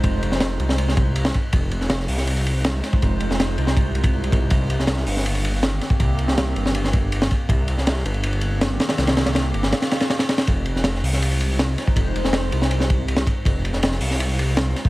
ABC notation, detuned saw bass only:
X:1
M:4/4
L:1/16
Q:1/4=161
K:Fm
V:1 name="Detuned saw bass" clef=bass
F,,,3 F,,,3 C,,8 z2 | F,,,3 F,,,3 C,,8 z2 | F,,,3 F,,,3 C,,6 C,,3 C,, | C,,3 C,,3 G,,,8 z2 |
C,,3 C,,3 G,,,8 z2 | C,,3 C,,3 G,,,8 z2 | C,,3 C,,3 G,,,2 z8 | F,,,3 F,,,3 C,,8 z2 |
F,,,3 F,,,3 C,,8 z2 | F,,,3 F,,,3 C,,8 z2 |]